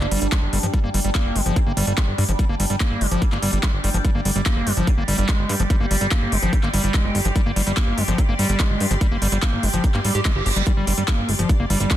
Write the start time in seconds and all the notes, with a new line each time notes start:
Already playing: G3 D4 G4 D5 G5
0.01 G1 A#3, clap
0.11 G1 G3, open hi-hat
0.22 G1 G3, closed hi-hat
0.32 G3, kick, clap, closed hi-hat
0.43 G1
0.53 G1 G3, open hi-hat
0.63 G1 F3, closed hi-hat
0.73 G3, kick, closed hi-hat
0.84 G1 A#3
0.94 G1 G3, open hi-hat
1.05 G1 G3, closed hi-hat
1.15 A#3, kick, clap, closed hi-hat
1.25 G1
1.36 G1 G3, open hi-hat
1.46 G1 F3, closed hi-hat
1.56 G#3, kick, closed hi-hat
1.67 G1 A#3
1.77 G1 G3, open hi-hat
1.87 G1 G3, closed hi-hat
1.98 G3, kick, clap, closed hi-hat
2.08 G1
2.18 G2 G3, open hi-hat
2.29 G1 F3, closed hi-hat
2.39 G3, kick, closed hi-hat
2.49 G1 A#3
2.60 G1 G3, open hi-hat
2.70 G1 G3, closed hi-hat
2.80 A#3, kick, clap, closed hi-hat
2.91 G1
3.01 G1 G3, open hi-hat
3.11 G1 F3, closed hi-hat
3.22 G#3, kick, closed hi-hat
3.32 G1 A#3, clap
3.42 G1 G3, open hi-hat
3.53 G1 G3, closed hi-hat
3.63 G3, kick, clap, closed hi-hat
3.74 G1
3.84 G1 G3, open hi-hat
3.94 G1 F3, closed hi-hat
4.05 G3 G4, kick, closed hi-hat
4.15 G1 A#3
4.25 G1 G3, open hi-hat
4.36 G1 G3, closed hi-hat
4.46 A#3, kick, clap, closed hi-hat
4.56 G1
4.67 G1 G3, open hi-hat
4.77 G1 F3, closed hi-hat
4.87 G#3, kick, closed hi-hat
4.98 G1 A#3
5.08 G1 G3, open hi-hat
5.18 G1 G3, closed hi-hat
5.29 G#3, kick, clap, closed hi-hat
5.39 G1
5.49 G2 G3, open hi-hat
5.60 G1 F3 C6, closed hi-hat
5.70 G3, kick, closed hi-hat
5.80 G1 A#3
5.91 G1 G3, open hi-hat
6.01 G1 G3, closed hi-hat
6.11 A#3, kick, clap, closed hi-hat
6.22 G1
6.32 G1 G3, open hi-hat
6.43 G1 F3, closed hi-hat
6.53 G#3, kick, closed hi-hat
6.63 G1 A#3, clap
6.74 G1 G3, open hi-hat
6.84 G1 G3, closed hi-hat
6.94 G#3, kick, clap, closed hi-hat
7.05 G1
7.15 G1 G3, open hi-hat
7.25 G1 F3, closed hi-hat
7.36 G3, kick, closed hi-hat
7.46 G1 A#3
7.56 G1 G3, open hi-hat
7.67 G1 G3, closed hi-hat
7.77 A#3, kick, clap, closed hi-hat
7.87 G1
7.98 G1 G3, open hi-hat
8.08 G1 F3, closed hi-hat
8.18 G#3, kick, closed hi-hat
8.29 G1 A#3
8.39 G1 G3, open hi-hat
8.49 G1 G3, closed hi-hat
8.60 G#3, kick, clap, closed hi-hat
8.70 G1
8.80 G2 G3, open hi-hat
8.91 G1 F3, closed hi-hat
9.01 G3, kick, closed hi-hat
9.11 G1 A#3
9.22 G1 G3, open hi-hat
9.32 G1 G3, closed hi-hat
9.43 A#3, kick, clap, closed hi-hat
9.53 G1
9.63 G1 G3, open hi-hat
9.74 G1 F3, closed hi-hat
9.84 G#3, kick, closed hi-hat, reverse cymbal
9.94 G2 A#3, clap
10.05 G#1 G3, open hi-hat
10.15 G#1 G4, closed hi-hat
10.25 G#3, kick, clap, closed hi-hat
10.36 G1 G4
10.46 G1 G4, open hi-hat
10.56 G1 G3, closed hi-hat
10.67 G3 D4, kick, closed hi-hat
10.77 G1 G3
10.87 G1 G3, open hi-hat
10.98 G1 G3, closed hi-hat
11.08 A#3, kick, clap, closed hi-hat
11.18 G1
11.29 G1 G3, open hi-hat
11.39 G1 F3, closed hi-hat
11.49 G#3, kick, closed hi-hat
11.60 G1 A#3
11.70 G1 G3, open hi-hat
11.80 G1 G3, closed hi-hat
11.91 G#3, kick, clap, closed hi-hat